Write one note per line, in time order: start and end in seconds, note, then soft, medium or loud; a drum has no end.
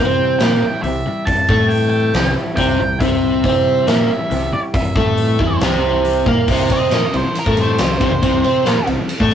0.00 0.38 C3 medium
0.00 1.28 C3 medium
0.00 1.71 E3 medium
0.00 0.19 G3 medium
0.00 0.40 C4 medium
0.00 0.41 C5 medium
0.00 0.38 G5 medium
0.20 1.06 G3 medium
0.39 0.61 A#2 medium
0.39 0.62 A#3 medium
0.39 0.84 G4 medium
0.39 0.63 A#4 medium
0.39 0.82 G5 medium
0.39 snare loud
0.39 open hi-hat medium
0.63 2.36 E4 medium
0.63 muted picked electric bass stroke soft
0.63 muted overdriven electric guitar stroke medium
0.83 1.04 C2 medium
0.83 1.02 C3 medium
0.83 2.14 G4 medium
0.83 1.28 E5 medium
0.83 open hi-hat medium
1.06 1.49 G3 medium
1.06 muted picked electric bass stroke soft
1.06 muted overdriven electric guitar stroke medium
1.25 3.01 C3 medium
1.25 1.71 A5 loud
1.25 kick loud
1.25 open hi-hat medium
1.49 2.10 A2 medium
1.49 1.93 G3 medium
1.49 2.14 A3 medium
1.49 2.14 A4 loud
1.49 kick loud
1.68 3.44 E3 medium
1.68 1.89 G5 medium
1.68 open hi-hat medium
1.90 2.79 G3 medium
1.90 2.32 G5 medium
2.14 2.34 C2 medium
2.14 2.32 C3 medium
2.14 2.58 G4 medium
2.14 snare loud
2.14 open hi-hat medium
2.36 4.10 E4 medium
2.56 2.78 C2 medium
2.56 2.79 C3 loud
2.56 2.79 C4 loud
2.56 3.87 G4 medium
2.56 3.00 G5 loud
2.56 kick loud
2.56 open hi-hat medium
2.80 3.00 C2 medium
2.80 2.97 C3 medium
2.80 3.22 G3 medium
3.00 3.41 C2 medium
3.00 4.74 C3 medium
3.00 3.44 C3 loud
3.00 3.44 C4 loud
3.00 3.87 E5 medium
3.00 kick loud
3.00 open hi-hat medium
3.23 3.66 G3 medium
3.44 3.85 C3 loud
3.44 5.18 E3 medium
3.44 3.87 C4 medium
3.44 3.88 C5 loud
3.44 kick loud
3.44 open hi-hat medium
3.66 4.52 G3 medium
3.87 4.08 A#2 medium
3.87 4.09 A#3 medium
3.87 4.30 G4 medium
3.87 4.09 A#4 loud
3.87 4.55 E5 medium
3.87 snare loud
3.87 open hi-hat medium
4.09 5.18 E4 medium
4.09 muted picked electric bass stroke soft
4.09 muted overdriven electric guitar stroke medium
4.31 4.51 C2 medium
4.31 4.49 C3 medium
4.31 5.40 G4 medium
4.31 snare soft
4.31 open hi-hat medium
4.52 4.95 G3 medium
4.52 4.59 D5 medium
4.52 muted picked electric bass stroke soft
4.52 muted overdriven electric guitar stroke medium
4.74 5.83 C3 medium
4.74 5.58 E5 medium
4.74 kick loud
4.74 open hi-hat medium
4.95 5.36 A2 medium
4.95 5.39 G3 medium
4.95 5.39 A3 medium
4.95 5.40 A4 loud
4.95 kick loud
5.17 6.27 E3 medium
5.17 open hi-hat medium
5.39 5.60 E2 medium
5.39 5.61 E3 medium
5.39 6.26 G3 medium
5.39 5.61 E4 medium
5.39 kick loud
5.61 6.23 C2 medium
5.61 6.26 C3 loud
5.61 6.27 C4 loud
5.61 6.04 G4 medium
5.61 snare loud
5.61 open hi-hat soft
5.83 6.49 E4 medium
6.05 6.49 G4 medium
6.05 open hi-hat medium
6.26 6.47 A#2 medium
6.26 6.49 G3 medium
6.26 6.48 A#3 medium
6.26 6.48 A#4 loud
6.26 kick loud
6.48 6.68 C2 medium
6.48 6.69 C3 medium
6.48 6.70 C3 loud
6.48 6.69 E3 medium
6.48 6.70 G3 medium
6.48 6.69 C4 loud
6.48 kick loud
6.48 crash loud
6.70 6.90 C3 medium
6.70 6.90 E3 medium
6.70 6.91 C4 medium
6.70 6.92 C5 loud
6.70 7.13 D#5 medium
6.70 kick medium
6.70 ride medium
6.91 7.02 A#2 medium
6.91 7.12 C3 medium
6.91 7.12 E3 medium
6.91 7.03 A#3 medium
6.91 7.03 A#4 loud
6.91 snare loud
6.91 ride medium
7.02 muted picked electric bass stroke soft
7.02 muted overdriven electric guitar stroke medium
7.14 7.24 C2 medium
7.14 7.34 C3 medium
7.14 7.24 C3 medium
7.14 7.34 E3 medium
7.14 7.35 G3 medium
7.14 7.36 C5 medium
7.14 ride medium
7.25 muted picked electric bass stroke soft
7.25 muted overdriven electric guitar stroke medium
7.35 7.55 C3 medium
7.35 7.55 E3 medium
7.35 ride medium
7.39 7.58 A#4 medium
7.46 7.77 A2 medium
7.46 7.78 A3 medium
7.46 7.79 A4 loud
7.46 kick loud
7.57 7.78 C3 medium
7.57 7.78 E3 medium
7.57 7.78 G3 loud
7.57 snare soft
7.57 ride medium
7.61 8.86 C5 medium
7.78 8.00 C2 medium
7.78 7.96 C3 medium
7.78 7.98 C3 medium
7.78 7.99 E3 medium
7.78 snare loud
7.78 ride loud
8.00 8.11 C2 medium
8.00 8.10 C3 medium
8.00 8.20 C3 medium
8.00 8.21 E3 medium
8.00 8.11 C4 loud
8.00 kick loud
8.00 ride medium
8.11 8.22 C2 medium
8.11 8.21 C3 medium
8.22 8.43 C2 medium
8.22 8.43 C3 medium
8.22 8.44 E3 loud
8.22 8.44 G3 loud
8.22 8.42 C4 loud
8.22 kick loud
8.22 ride medium
8.44 8.64 C3 medium
8.44 8.65 C3 medium
8.44 8.64 E3 medium
8.44 8.65 C4 medium
8.44 8.65 C5 medium
8.44 ride medium
8.66 8.77 A#2 medium
8.66 8.86 C3 medium
8.66 8.86 E3 medium
8.66 8.76 A#3 medium
8.66 8.76 A#4 loud
8.66 snare loud
8.66 ride medium
8.76 muted overdriven electric guitar stroke medium
8.76 muted picked electric bass stroke soft
8.87 8.98 C2 medium
8.87 8.97 C3 medium
8.87 9.08 C3 medium
8.87 9.08 E3 medium
8.87 9.09 G3 medium
8.87 ride medium
8.98 muted overdriven electric guitar stroke medium
9.09 9.29 C3 medium
9.09 9.29 E3 medium
9.09 ride medium
9.20 9.34 A2 loud
9.20 9.34 A3 loud
9.20 9.34 A4 loud
9.20 kick loud
9.31 9.34 C3 medium